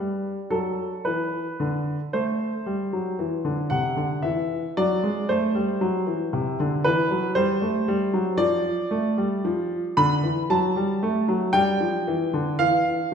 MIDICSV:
0, 0, Header, 1, 2, 480
1, 0, Start_track
1, 0, Tempo, 1060071
1, 962, Time_signature, 3, 2, 24, 8
1, 2394, Tempo, 1045296
1, 6000, End_track
2, 0, Start_track
2, 0, Title_t, "Grand piano"
2, 0, Program_c, 0, 0
2, 0, Note_on_c, 0, 55, 70
2, 0, Note_on_c, 0, 62, 42
2, 0, Note_on_c, 0, 71, 84
2, 124, Note_off_c, 0, 71, 0
2, 172, Note_off_c, 0, 55, 0
2, 229, Note_on_c, 0, 54, 70
2, 229, Note_on_c, 0, 69, 82
2, 406, Note_off_c, 0, 54, 0
2, 474, Note_on_c, 0, 71, 86
2, 475, Note_off_c, 0, 69, 0
2, 477, Note_on_c, 0, 52, 71
2, 652, Note_off_c, 0, 52, 0
2, 724, Note_on_c, 0, 50, 73
2, 886, Note_off_c, 0, 71, 0
2, 896, Note_off_c, 0, 50, 0
2, 942, Note_off_c, 0, 62, 0
2, 966, Note_on_c, 0, 72, 88
2, 968, Note_on_c, 0, 57, 72
2, 1139, Note_off_c, 0, 57, 0
2, 1206, Note_on_c, 0, 55, 67
2, 1317, Note_off_c, 0, 55, 0
2, 1327, Note_on_c, 0, 54, 65
2, 1437, Note_off_c, 0, 54, 0
2, 1444, Note_on_c, 0, 52, 74
2, 1555, Note_off_c, 0, 52, 0
2, 1561, Note_on_c, 0, 50, 75
2, 1573, Note_off_c, 0, 72, 0
2, 1673, Note_off_c, 0, 50, 0
2, 1675, Note_on_c, 0, 78, 101
2, 1680, Note_on_c, 0, 48, 71
2, 1792, Note_off_c, 0, 48, 0
2, 1796, Note_on_c, 0, 50, 69
2, 1910, Note_off_c, 0, 50, 0
2, 1913, Note_on_c, 0, 76, 82
2, 1915, Note_off_c, 0, 78, 0
2, 1919, Note_on_c, 0, 52, 77
2, 2091, Note_off_c, 0, 52, 0
2, 2118, Note_off_c, 0, 76, 0
2, 2161, Note_on_c, 0, 54, 84
2, 2161, Note_on_c, 0, 74, 105
2, 2272, Note_off_c, 0, 54, 0
2, 2280, Note_on_c, 0, 56, 81
2, 2391, Note_off_c, 0, 56, 0
2, 2395, Note_on_c, 0, 72, 96
2, 2396, Note_off_c, 0, 74, 0
2, 2400, Note_on_c, 0, 57, 79
2, 2510, Note_off_c, 0, 57, 0
2, 2515, Note_on_c, 0, 55, 75
2, 2627, Note_off_c, 0, 55, 0
2, 2634, Note_on_c, 0, 54, 82
2, 2747, Note_off_c, 0, 54, 0
2, 2751, Note_on_c, 0, 52, 69
2, 2865, Note_off_c, 0, 52, 0
2, 2873, Note_on_c, 0, 48, 79
2, 2987, Note_off_c, 0, 48, 0
2, 2996, Note_on_c, 0, 50, 82
2, 3109, Note_off_c, 0, 50, 0
2, 3109, Note_on_c, 0, 71, 107
2, 3113, Note_off_c, 0, 72, 0
2, 3113, Note_on_c, 0, 52, 88
2, 3227, Note_off_c, 0, 52, 0
2, 3231, Note_on_c, 0, 54, 69
2, 3315, Note_off_c, 0, 71, 0
2, 3342, Note_on_c, 0, 72, 106
2, 3346, Note_off_c, 0, 54, 0
2, 3346, Note_on_c, 0, 55, 82
2, 3463, Note_off_c, 0, 55, 0
2, 3465, Note_on_c, 0, 57, 74
2, 3582, Note_off_c, 0, 57, 0
2, 3585, Note_on_c, 0, 55, 88
2, 3701, Note_off_c, 0, 55, 0
2, 3702, Note_on_c, 0, 54, 81
2, 3751, Note_off_c, 0, 72, 0
2, 3812, Note_on_c, 0, 53, 87
2, 3812, Note_on_c, 0, 74, 116
2, 3819, Note_off_c, 0, 54, 0
2, 3990, Note_off_c, 0, 53, 0
2, 4057, Note_on_c, 0, 57, 82
2, 4177, Note_off_c, 0, 57, 0
2, 4180, Note_on_c, 0, 55, 72
2, 4299, Note_off_c, 0, 55, 0
2, 4304, Note_on_c, 0, 53, 90
2, 4480, Note_off_c, 0, 53, 0
2, 4544, Note_off_c, 0, 74, 0
2, 4544, Note_on_c, 0, 83, 123
2, 4545, Note_on_c, 0, 50, 94
2, 4662, Note_off_c, 0, 50, 0
2, 4664, Note_on_c, 0, 52, 74
2, 4750, Note_off_c, 0, 83, 0
2, 4781, Note_off_c, 0, 52, 0
2, 4787, Note_on_c, 0, 54, 85
2, 4788, Note_on_c, 0, 81, 96
2, 4902, Note_off_c, 0, 54, 0
2, 4908, Note_on_c, 0, 55, 76
2, 5022, Note_off_c, 0, 55, 0
2, 5030, Note_on_c, 0, 57, 88
2, 5143, Note_off_c, 0, 57, 0
2, 5147, Note_on_c, 0, 54, 87
2, 5260, Note_on_c, 0, 79, 119
2, 5261, Note_on_c, 0, 62, 53
2, 5262, Note_off_c, 0, 54, 0
2, 5264, Note_on_c, 0, 55, 84
2, 5267, Note_off_c, 0, 81, 0
2, 5381, Note_off_c, 0, 55, 0
2, 5387, Note_on_c, 0, 53, 77
2, 5503, Note_off_c, 0, 53, 0
2, 5510, Note_on_c, 0, 52, 87
2, 5625, Note_off_c, 0, 52, 0
2, 5631, Note_on_c, 0, 50, 73
2, 5745, Note_off_c, 0, 50, 0
2, 5746, Note_on_c, 0, 52, 85
2, 5747, Note_off_c, 0, 79, 0
2, 5747, Note_on_c, 0, 77, 118
2, 5921, Note_off_c, 0, 52, 0
2, 6000, Note_off_c, 0, 62, 0
2, 6000, Note_off_c, 0, 77, 0
2, 6000, End_track
0, 0, End_of_file